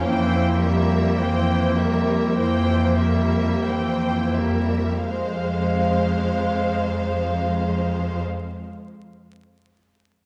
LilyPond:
<<
  \new Staff \with { instrumentName = "Violin section" } { \time 4/4 \key f \minor \tempo 4 = 46 g''8 e''8 g''8 e''8 g''8 e''8 g''8 e''8 | f''1 | }
  \new Staff \with { instrumentName = "Violin section" } { \time 4/4 \key f \minor c''8 bes'8 c''8 bes'8 c''8 bes'8 c''8 bes'8 | c''1 | }
  \new Staff \with { instrumentName = "Clarinet" } { \time 4/4 \key f \minor bes1 | aes1 | }
  \new Staff \with { instrumentName = "Viola section" } { \clef bass \time 4/4 \key f \minor e8 g8 e8 g8 e8 g8 e8 g8 | aes1 | }
  \new Staff \with { instrumentName = "Cello section" } { \clef bass \time 4/4 \key f \minor f,4 f,4 f,4 f,4 | f,1 | }
>>